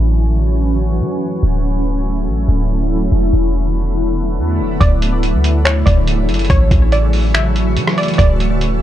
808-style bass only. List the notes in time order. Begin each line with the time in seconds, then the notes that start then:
Already playing: A1
1.01 E3
1.43 D1
2.27 A1
2.48 D1
3.12 E1
3.33 E1
4.38 E2
4.60 E1
4.81 D1
5.34 D2
5.87 D1
6.29 F#1
6.50 A1
6.71 A1
7.77 E3
8.19 D1